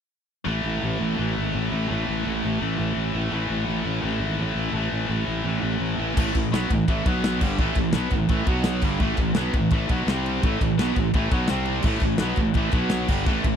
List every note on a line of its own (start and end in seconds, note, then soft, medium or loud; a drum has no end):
0.45 0.62 A1 medium
0.45 1.17 A2 medium
0.45 1.19 E3 medium
0.45 1.20 A3 medium
0.64 0.80 A1 medium
0.83 0.99 A1 medium
1.01 1.16 A1 medium
1.18 1.34 A1 medium
1.18 1.88 A2 medium
1.18 1.90 E3 medium
1.18 1.91 A3 medium
1.38 1.53 G#1 medium
1.55 1.70 A1 medium
1.71 1.88 A1 medium
1.71 1.89 A2 medium
1.71 1.91 E3 medium
1.71 1.92 A3 medium
1.89 2.06 A1 medium
1.89 2.59 A2 medium
1.89 2.61 E3 medium
1.89 2.62 A3 medium
2.09 2.24 A1 medium
2.27 2.42 A1 medium
2.45 2.60 A1 medium
2.59 2.77 A1 medium
2.59 3.31 A2 medium
2.59 3.32 E3 medium
2.59 3.33 A3 medium
2.79 2.95 A1 medium
2.97 3.12 A1 medium
3.15 3.31 A1 medium
3.15 3.32 A2 medium
3.15 3.34 E3 medium
3.15 3.35 A3 medium
3.31 3.48 A1 medium
3.31 4.02 A2 medium
3.31 4.03 E3 medium
3.31 4.05 A3 medium
3.50 3.66 A1 medium
3.68 3.84 A1 medium
3.85 4.01 A1 medium
4.02 4.19 A1 medium
4.02 4.74 A2 medium
4.02 4.75 E3 medium
4.02 4.76 A3 medium
4.20 4.37 G#1 medium
4.39 4.55 A1 medium
4.56 4.72 A1 medium
4.56 4.74 A2 medium
4.56 4.76 E3 medium
4.56 4.77 A3 medium
4.73 4.90 A1 medium
4.73 5.44 A2 medium
4.73 5.45 E3 medium
4.73 5.46 A3 medium
4.92 5.08 A1 medium
5.09 5.26 A1 medium
5.28 5.44 A1 medium
5.45 5.62 A1 medium
5.45 6.15 A2 medium
5.45 6.16 E3 medium
5.45 6.16 A3 medium
5.63 5.79 A1 medium
5.80 5.97 A1 medium
5.98 6.15 A1 medium
5.98 6.16 A2 medium
5.98 6.17 E3 medium
5.98 6.16 A3 medium
6.16 6.33 A1 medium
6.16 6.34 A2 medium
6.16 6.34 E3 medium
6.16 6.35 A3 medium
6.16 kick loud
6.16 crash loud
6.35 6.52 A1 medium
6.35 6.49 A2 medium
6.35 6.49 E3 medium
6.35 kick medium
6.35 ride medium
6.52 6.70 B1 medium
6.52 6.70 B2 medium
6.52 6.70 F#3 medium
6.52 6.70 B3 medium
6.52 snare loud
6.52 ride loud
6.70 6.87 A1 medium
6.70 6.85 A2 medium
6.70 6.85 E3 medium
6.70 kick medium
6.70 ride medium
6.88 7.05 A1 medium
6.88 7.05 A2 medium
6.88 7.05 E3 loud
6.88 7.06 A3 loud
6.88 kick loud
6.88 ride loud
7.05 7.39 B1 loud
7.05 7.41 B2 loud
7.05 7.41 F#3 medium
7.05 7.41 B3 loud
7.05 kick loud
7.05 ride medium
7.24 snare loud
7.24 ride loud
7.41 7.57 G1 medium
7.41 7.59 G2 medium
7.41 7.58 D3 medium
7.41 7.59 G3 loud
7.41 kick loud
7.41 crash loud
7.58 7.75 A1 medium
7.58 7.76 A2 medium
7.58 7.76 E3 medium
7.58 7.77 A3 loud
7.58 kick loud
7.75 7.93 A1 medium
7.75 7.91 A2 medium
7.75 7.91 E3 medium
7.75 kick medium
7.75 ride medium
7.92 8.11 B1 medium
7.92 8.11 B2 medium
7.92 8.11 F#3 medium
7.92 8.12 B3 medium
7.92 snare loud
7.92 ride loud
8.11 8.29 A1 medium
8.11 8.26 A2 medium
8.11 8.27 E3 medium
8.11 kick medium
8.11 ride medium
8.29 8.46 A1 medium
8.29 8.46 A2 medium
8.29 8.47 E3 loud
8.29 8.47 A3 loud
8.29 kick loud
8.29 ride loud
8.46 8.80 B1 loud
8.46 8.82 B2 medium
8.46 8.83 F#3 loud
8.46 8.83 B3 loud
8.46 kick loud
8.46 ride medium
8.64 snare loud
8.64 ride medium
8.81 8.99 G1 medium
8.81 9.00 G2 medium
8.81 8.99 D3 loud
8.81 9.00 G3 loud
8.81 kick loud
8.81 crash medium
8.99 9.17 A1 loud
8.99 9.17 A2 medium
8.99 9.18 E3 medium
8.99 9.18 A3 loud
8.99 kick loud
9.17 9.35 A1 medium
9.17 9.33 A2 medium
9.17 9.33 E3 medium
9.17 kick medium
9.17 ride medium
9.34 9.53 B1 loud
9.34 9.53 B2 medium
9.34 9.54 F#3 medium
9.34 9.54 B3 medium
9.34 snare loud
9.34 ride loud
9.54 9.71 A1 medium
9.54 9.69 A2 medium
9.54 9.69 E3 medium
9.54 kick medium
9.54 ride medium
9.70 9.88 A1 loud
9.70 9.89 A2 medium
9.70 9.90 E3 loud
9.70 9.90 A3 loud
9.70 kick loud
9.70 ride loud
9.89 10.06 B1 medium
9.89 10.07 B2 medium
9.89 10.07 F#3 loud
9.89 10.08 B3 loud
9.89 kick loud
9.89 ride medium
10.07 10.40 C2 medium
10.07 10.42 C3 medium
10.07 10.43 G3 medium
10.07 10.43 C4 loud
10.07 snare loud
10.07 ride loud
10.26 ride medium
10.42 10.60 A1 medium
10.42 10.59 A2 loud
10.42 10.60 E3 loud
10.42 10.60 A3 loud
10.42 kick loud
10.42 ride loud
10.61 10.77 A1 medium
10.61 10.75 A2 medium
10.61 10.75 E3 medium
10.61 kick medium
10.61 ride medium
10.78 10.95 B1 medium
10.78 10.95 B2 medium
10.78 10.96 F#3 loud
10.78 10.96 B3 medium
10.78 snare loud
10.78 ride loud
10.96 11.13 A1 medium
10.96 11.11 A2 medium
10.96 11.11 E3 medium
10.96 kick medium
10.96 ride medium
11.14 11.30 A1 medium
11.14 11.31 A2 medium
11.14 11.31 E3 medium
11.14 11.31 A3 loud
11.14 kick loud
11.14 ride loud
11.31 11.48 B1 medium
11.31 11.49 B2 medium
11.31 11.49 F#3 loud
11.31 11.49 B3 loud
11.31 kick loud
11.31 ride medium
11.47 11.83 C2 medium
11.47 11.84 C3 medium
11.47 11.84 G3 loud
11.47 11.85 C4 loud
11.47 snare loud
11.47 ride medium
11.65 ride medium
11.82 12.01 A1 medium
11.82 12.01 A2 medium
11.82 12.01 E3 medium
11.82 12.02 A3 loud
11.82 kick loud
11.82 crash loud
12.00 12.19 A1 medium
12.00 12.17 A2 medium
12.00 12.17 E3 medium
12.00 kick medium
12.00 ride medium
12.18 12.36 B1 medium
12.18 12.37 B2 medium
12.18 12.37 F#3 medium
12.18 12.37 B3 loud
12.18 snare loud
12.18 ride loud
12.36 12.54 A1 medium
12.36 12.53 A2 medium
12.36 12.53 E3 medium
12.36 kick medium
12.36 ride medium
12.54 12.72 A1 medium
12.54 12.72 A2 medium
12.54 12.72 E3 loud
12.54 12.73 A3 loud
12.54 kick loud
12.54 ride loud
12.72 13.06 B1 loud
12.72 13.08 B2 medium
12.72 13.09 F#3 medium
12.72 13.09 B3 loud
12.72 kick loud
12.72 ride medium
12.90 snare loud
12.90 ride loud
13.08 13.25 G1 medium
13.08 13.26 G2 medium
13.08 13.26 D3 medium
13.08 13.26 G3 medium
13.08 kick loud
13.08 crash loud
13.26 13.43 A1 medium
13.26 13.44 A2 medium
13.26 13.43 E3 medium
13.26 13.45 A3 loud
13.26 kick loud
13.44 13.56 A1 medium
13.44 13.56 A2 medium
13.44 13.56 E3 medium
13.44 kick medium
13.44 ride medium